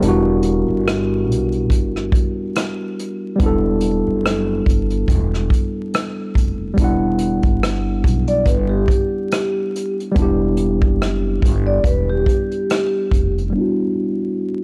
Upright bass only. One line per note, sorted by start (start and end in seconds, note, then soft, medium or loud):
0.02 0.64 E1 loud
0.68 1.29 G1 medium
1.29 1.70 B1 medium
1.70 2.09 G1 loud
3.40 4.02 E1 medium
4.07 4.63 F#1 medium
4.67 5.05 G1 medium
5.08 5.47 E1 loud
6.36 6.74 F1 medium
6.78 7.40 E1 medium
7.44 8.01 G1 medium
8.04 8.43 B1 loud
8.46 8.85 G1 loud
10.16 10.82 E1 loud
10.82 11.39 F#1 medium
11.43 11.81 G1 medium
11.84 12.23 E1 loud
13.12 13.51 F1 medium